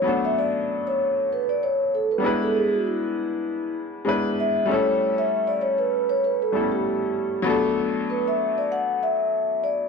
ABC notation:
X:1
M:4/4
L:1/16
Q:"Swing 16ths" 1/4=97
K:Bm
V:1 name="Vibraphone"
f e d3 c3 B d c2 A B2 A | ^G F E6 z4 e2 c2- | c e2 d c B2 c B A2 G4- G- | G z3 B e2 d f2 e4 d2 |]
V:2 name="Grand piano"
[F,A,B,DA]12- [F,A,B,DA]2 [G,^G,B,DEB]2- | [G,^G,B,DEB]8- [=G,^G,B,DEB]2 [G,B,DEB]4 [=G,A,CEA]2- | [G,A,CEA]8- [G,A,CEA]2 [G,A,B,CEA]6 | [F,A,B,DA]16 |]